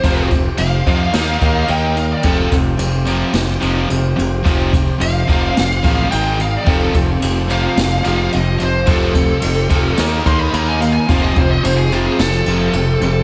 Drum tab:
CC |--------|--------|--------|x-------|
RD |xxxxxxxx|xxxxxxxx|xxxxxxxx|-xxxxxxx|
SD |-o--o---|-o--o---|-o--o---|----o---|
BD |oo-o-o--|oo------|oo-o-o--|oo------|

CC |--------|--------|
RD |xxxxxxxx|xxxxxxxx|
SD |-o--o---|----o---|
BD |oo-o-o--|oo------|